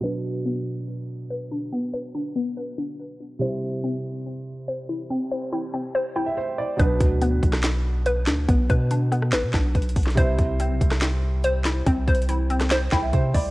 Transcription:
0.01 3.36 B2 medium
0.01 3.37 F#3 medium
0.01 3.38 D4 medium
0.01 1.29 B4 medium
0.05 3.38 B4 medium
0.46 1.71 B3 medium
1.30 1.92 B4 medium
1.51 2.13 D4 medium
1.72 2.35 B3 medium
1.93 2.56 B4 medium
2.15 2.77 D4 medium
2.36 3.41 B3 medium
2.57 3.41 B4 loud
2.78 3.41 D4 medium
3.39 6.74 C3 medium
3.39 6.75 G3 medium
3.39 6.76 E4 medium
3.39 4.67 C5 loud
3.44 6.36 C5 medium
3.84 5.09 C4 medium
4.68 5.30 C5 loud
4.89 5.51 E4 medium
5.10 5.73 C4 loud
5.32 5.94 C5 medium
5.53 6.15 E4 medium
5.74 6.79 C4 medium
5.95 6.79 C5 loud
6.16 6.79 E4 medium
6.16 6.26 G5 medium
6.26 6.36 E5 medium
6.37 6.57 C5 medium
6.58 6.78 D5 medium
6.77 7.00 B1 loud
6.77 10.12 B2 medium
6.77 10.13 F#3 medium
6.77 10.14 D4 medium
6.77 8.05 B4 loud
6.77 kick loud
6.77 closed hi-hat medium
6.81 10.14 B4 medium
7.00 7.41 D2 loud
7.00 kick loud
7.00 closed hi-hat medium
7.22 8.47 B3 medium
7.22 closed hi-hat medium
7.43 8.29 B1 loud
7.43 kick medium
7.43 closed hi-hat medium
7.53 cross-stick medium
7.53 snare medium
7.63 snare loud
7.63 clap medium
7.63 closed hi-hat medium
8.06 8.68 B4 loud
8.06 closed hi-hat medium
8.27 8.47 D2 loud
8.27 8.90 D4 medium
8.27 snare loud
8.27 clap medium
8.27 closed hi-hat medium
8.48 8.69 B1 loud
8.48 9.11 B3 medium
8.48 kick loud
8.48 closed hi-hat medium
8.70 9.34 B2 loud
8.70 9.32 B4 loud
8.70 kick loud
8.70 closed hi-hat medium
8.91 9.53 D4 medium
8.91 closed hi-hat medium
9.12 10.17 B3 medium
9.12 cross-stick medium
9.12 closed hi-hat medium
9.22 cross-stick medium
9.32 9.45 A1 loud
9.32 10.17 B4 loud
9.32 snare loud
9.32 clap medium
9.32 closed hi-hat medium
9.44 9.54 B2 loud
9.54 9.74 B1 loud
9.54 10.17 D4 medium
9.54 kick medium
9.54 snare medium
9.54 clap medium
9.75 9.95 B1 loud
9.75 kick medium
9.75 closed hi-hat soft
9.82 closed hi-hat medium
9.89 closed hi-hat medium
9.96 10.17 B1 loud
9.96 kick loud
9.96 closed hi-hat medium
9.96 open hi-hat medium
10.03 snare medium
10.03 closed hi-hat medium
10.10 closed hi-hat medium
10.15 10.38 C2 loud
10.15 13.50 C3 medium
10.15 13.51 G3 medium
10.15 13.51 E4 medium
10.15 11.43 C5 loud
10.15 kick loud
10.15 closed hi-hat medium
10.20 13.12 C5 medium
10.39 10.72 C2 loud
10.39 kick loud
10.39 closed hi-hat medium
10.60 11.85 C4 medium
10.60 closed hi-hat medium
10.70 10.80 B1 loud
10.81 11.83 C2 loud
10.81 kick medium
10.81 closed hi-hat medium
10.91 cross-stick loud
10.91 snare medium
11.01 snare loud
11.01 clap medium
11.01 closed hi-hat medium
11.44 12.06 C5 loud
11.44 closed hi-hat medium
11.65 12.28 E4 medium
11.65 snare loud
11.65 clap medium
11.65 closed hi-hat medium
11.86 12.07 C2 loud
11.86 12.49 C4 loud
11.86 kick loud
11.86 closed hi-hat medium
12.08 12.89 C2 loud
12.08 12.70 C5 medium
12.08 kick loud
12.08 closed hi-hat soft
12.15 closed hi-hat medium
12.22 closed hi-hat medium
12.29 12.91 E4 medium
12.29 closed hi-hat medium
12.50 13.51 C4 medium
12.50 closed hi-hat medium
12.60 cross-stick medium
12.60 snare medium
12.60 closed hi-hat medium
12.70 13.51 C5 loud
12.70 snare loud
12.70 clap medium
12.70 closed hi-hat medium
12.92 13.12 C2 loud
12.92 13.51 E4 medium
12.92 13.02 G5 medium
12.92 kick loud
12.92 snare medium
12.92 clap medium
13.02 13.12 E5 medium
13.13 13.33 C3 loud
13.13 13.33 C5 medium
13.13 kick medium
13.13 closed hi-hat medium
13.34 13.51 C2 loud
13.34 13.51 D5 medium
13.34 kick loud
13.34 open hi-hat medium

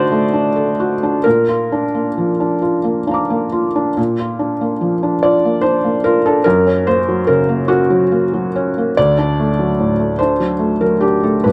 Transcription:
0.00 1.21 D3 medium
0.00 0.12 A3 medium
0.00 0.33 D4 medium
0.00 0.80 F#4 medium
0.00 0.56 A4 medium
0.00 1.24 C5 loud
0.00 1.27 D5 loud
0.00 1.28 D#5 loud
0.12 0.47 A3 medium
0.33 0.70 D4 medium
0.56 0.93 A4 medium
0.80 1.16 F#4 medium
1.03 1.26 D4 soft
1.24 3.94 A#2 medium
1.24 2.62 A#4 medium
1.49 1.85 F4 soft
1.72 2.08 D4 soft
1.95 2.31 A#3 soft
2.18 2.54 F3 soft
2.40 2.76 D4 soft
2.62 2.98 F4 soft
2.84 3.21 A#3 soft
3.07 3.44 D4 soft
3.07 3.93 F5 soft
3.07 3.95 A#5 soft
3.14 3.97 D6 soft
3.30 3.67 A#3 soft
3.52 3.88 F4 soft
3.76 3.97 D4 soft
3.97 6.41 A#2 medium
4.19 4.52 F4 soft
4.39 4.72 D4 soft
4.61 4.93 A#3 soft
4.81 5.13 F3 soft
5.03 5.35 D4 soft
5.23 5.55 F4 soft
5.23 5.63 D5 medium
5.45 5.77 A#3 soft
5.61 5.96 D4 soft
5.61 6.03 C5 medium
5.84 6.17 A#3 soft
6.04 6.38 F4 medium
6.04 6.25 A#4 medium
6.26 6.46 D4 soft
6.26 6.46 A4 medium
6.44 8.93 F#2 medium
6.44 6.85 A#4 medium
6.67 6.99 C#4 medium
6.87 7.19 A#3 medium
6.87 7.27 C5 medium
7.09 7.40 F#3 medium
7.27 7.60 C#3 soft
7.27 7.68 A#4 medium
7.49 7.81 A#3 medium
7.68 8.02 C#4 medium
7.68 8.97 F#4 medium
7.90 8.24 F#3 soft
8.12 8.46 A#3 medium
8.34 8.68 F#3 medium
8.56 8.89 C#4 medium
8.78 8.98 A#3 soft
8.97 11.41 D2 medium
8.97 10.18 D5 medium
9.19 9.50 D4 medium
9.40 9.71 A3 medium
9.59 9.90 F#3 soft
9.79 10.11 A2 soft
9.99 10.31 A3 soft
10.19 10.52 D4 soft
10.19 10.80 C5 medium
10.40 10.72 F#3 soft
10.59 10.93 A3 soft
10.81 11.15 F#3 soft
10.81 11.02 A#4 medium
11.01 11.36 D4 soft
11.01 11.22 G4 medium
11.23 11.45 A3 soft
11.23 11.45 A4 medium
11.44 11.52 G2 medium
11.44 11.52 B4 medium

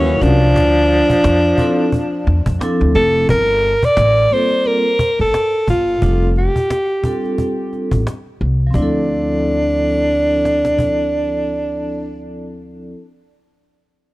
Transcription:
0.00 0.16 D#2 medium
0.00 0.24 E3 medium
0.00 0.29 F#3 medium
0.00 0.24 C#4 loud
0.00 0.30 C#4 medium
0.00 0.30 D#4 medium
0.00 0.30 F#4 medium
0.00 0.31 A#4 medium
0.00 0.51 F5 medium
0.08 cajon slap soft
0.22 0.56 C2 medium
0.22 2.61 F3 medium
0.22 2.61 D4 medium
0.22 cajon bass medium
0.42 cajon slap soft
0.56 1.00 D2 medium
0.56 cajon bass loud
0.91 cajon slap soft
1.10 cajon bass medium
1.24 1.52 F2 medium
1.24 cajon slap loud
1.57 1.83 F3 medium
1.57 1.84 C4 medium
1.57 1.84 D4 medium
1.57 1.85 E4 medium
1.57 1.85 A4 medium
1.57 cajon bass medium
1.78 cajon slap soft
1.92 cajon bass medium
1.92 cajon slap soft
2.12 cajon slap soft
2.27 2.43 E2 medium
2.27 cajon slap soft
2.46 2.58 F2 medium
2.46 cajon bass loud
2.59 3.28 F3 medium
2.59 3.29 C4 medium
2.59 3.29 D4 medium
2.59 3.30 E4 medium
2.59 cajon slap loud
2.63 3.30 A4 medium
2.81 2.92 D2 medium
2.95 3.23 F1 medium
2.95 3.27 A4 medium
2.95 cajon slap soft
3.14 cajon slap soft
3.29 3.73 G1 medium
3.29 3.86 A#4 medium
3.29 cajon bass loud
3.48 cajon slap soft
3.64 cajon slap soft
3.83 4.35 D5 loud
3.83 cajon bass medium
3.97 4.25 A1 medium
3.97 cajon slap loud
4.30 4.80 G3 medium
4.30 4.81 A#3 medium
4.30 4.81 C4 medium
4.30 4.82 F4 medium
4.30 4.82 A4 medium
4.30 4.68 C5 medium
4.30 cajon slap soft
4.51 cajon slap soft
4.65 5.20 A#4 medium
4.65 cajon slap soft
4.99 cajon bass loud
5.19 5.31 G1 medium
5.19 5.65 A4 medium
5.19 cajon slap soft
5.34 cajon slap medium
5.54 cajon slap soft
5.68 5.95 G1 medium
5.68 6.33 F4 medium
5.68 cajon bass medium
5.88 cajon slap soft
6.00 6.46 F1 medium
6.00 6.26 G3 medium
6.00 6.27 C4 medium
6.00 6.27 D4 medium
6.00 6.28 F4 medium
6.00 cajon bass loud
6.04 6.28 A4 medium
6.37 7.35 G4 medium
6.37 cajon slap soft
6.56 cajon bass medium
6.70 cajon slap medium
7.02 7.99 G3 medium
7.02 8.00 C4 medium
7.02 8.00 D4 medium
7.02 8.01 F4 medium
7.02 8.01 A4 medium
7.02 cajon bass medium
7.24 cajon slap soft
7.38 cajon bass medium
7.38 cajon slap soft
7.73 cajon slap soft
7.91 8.03 A1 medium
7.91 cajon bass medium
8.07 cajon slap medium
8.26 cajon slap soft
8.41 8.68 C2 medium
8.60 cajon slap soft
8.67 12.89 F3 medium
8.67 12.91 C4 medium
8.74 12.93 D2 medium
8.74 12.93 D4 medium
8.74 12.23 D4 medium
8.74 cajon bass medium
8.78 12.95 E4 medium
8.78 12.97 A4 medium
10.45 cajon slap medium
10.65 cajon slap medium
10.79 cajon bass medium

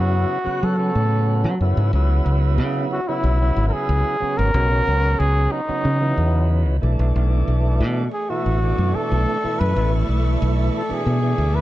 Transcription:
0.00 0.24 F#2 medium
0.00 0.38 C#3 medium
0.00 0.38 F#3 medium
0.00 0.39 B3 medium
0.00 0.39 E4 medium
0.00 0.65 F#4 medium
0.44 0.76 C#3 medium
0.44 0.76 F#3 medium
0.44 0.76 B3 medium
0.44 0.77 F#4 medium
0.44 muted fingered electric bass stroke soft
0.63 0.90 F#3 medium
0.63 1.61 A4 medium
0.78 1.54 C#3 medium
0.78 1.55 F#3 medium
0.78 1.55 B3 medium
0.78 1.55 C#4 medium
0.95 1.46 A2 medium
1.44 1.58 F#3 medium
1.61 1.74 F#2 medium
1.61 1.91 C#3 medium
1.61 1.91 F#3 medium
1.61 1.92 B3 medium
1.61 1.92 E4 loud
1.77 1.90 G#2 medium
1.93 2.20 C#2 loud
1.93 3.00 C#3 medium
1.93 3.00 F#3 medium
1.93 3.01 B3 medium
1.93 3.01 E4 loud
2.26 2.59 C#2 medium
2.58 2.85 C#3 medium
2.92 3.09 F#4 medium
3.08 3.38 C#3 medium
3.08 3.38 F#3 medium
3.08 3.38 B3 medium
3.08 3.66 E4 medium
3.08 3.39 E4 medium
3.24 3.50 B1 medium
3.41 4.16 C#3 medium
3.41 4.17 F#3 medium
3.41 4.17 B3 medium
3.41 4.17 E4 medium
3.56 3.70 G#1 medium
3.69 3.74 A#4 medium
3.73 4.39 G#4 medium
3.73 muted fingered electric bass stroke soft
3.89 4.02 C#2 medium
4.20 4.51 C#3 medium
4.20 4.51 F#3 medium
4.20 4.52 B3 medium
4.20 4.52 C#4 medium
4.20 muted fingered electric bass stroke soft
4.38 4.52 G#1 medium
4.38 5.20 A#4 loud
4.54 4.81 B1 loud
4.54 5.61 C#3 medium
4.54 5.61 F#3 medium
4.54 5.62 B3 medium
4.54 5.61 C#4 medium
4.87 5.14 C#2 medium
5.19 5.46 C#2 medium
5.19 5.53 G#4 medium
5.51 6.82 D#4 medium
5.68 5.99 C#3 medium
5.68 5.99 F#3 medium
5.68 5.99 B3 medium
5.68 5.99 C#4 medium
5.68 muted fingered electric bass stroke soft
5.85 6.11 C#3 medium
6.00 6.77 C#3 medium
6.00 6.77 E3 medium
6.00 6.76 F#3 medium
6.00 6.77 B3 medium
6.17 6.67 E2 medium
6.67 6.80 C#2 medium
6.81 6.96 B1 medium
6.81 8.03 B2 medium
6.81 8.04 E3 medium
6.81 8.04 A3 medium
6.81 8.05 D4 medium
6.99 7.12 B1 medium
7.16 7.42 B1 medium
7.16 11.61 A3 medium
7.16 11.61 D5 medium
7.16 11.61 E5 medium
7.16 11.61 C#6 medium
7.48 7.82 B1 medium
7.81 8.07 B2 medium
8.13 8.31 G#4 medium
8.30 8.60 B2 medium
8.30 8.60 E3 medium
8.30 8.60 A3 medium
8.30 8.60 E4 medium
8.30 8.97 F#4 medium
8.46 8.72 A1 medium
8.61 9.37 B2 medium
8.61 9.37 E3 medium
8.61 9.38 A3 medium
8.61 9.38 D4 medium
8.78 8.92 F#2 medium
8.95 9.61 A4 medium
8.95 muted fingered electric bass stroke soft
9.12 9.25 B1 medium
9.43 9.74 B2 medium
9.43 9.74 E3 medium
9.43 9.74 A3 medium
9.43 9.75 E4 medium
9.43 muted fingered electric bass stroke soft
9.59 9.73 F#2 medium
9.59 9.92 B4 medium
9.76 10.03 A1 loud
9.76 10.82 B2 medium
9.76 10.82 E3 medium
9.76 10.83 A3 medium
9.76 10.83 E4 medium
10.09 10.35 B1 medium
10.42 10.68 B1 medium
10.77 10.95 A4 medium
10.89 11.20 B2 medium
10.89 11.20 E3 medium
10.89 11.20 A3 medium
10.89 11.20 D4 medium
10.89 muted fingered electric bass stroke soft
10.93 11.56 G#4 medium
11.06 11.33 B2 medium
11.23 11.61 B2 medium
11.23 11.61 E3 medium
11.23 11.61 A3 medium
11.23 11.61 D4 medium
11.38 11.61 D2 medium
11.55 11.61 B4 medium

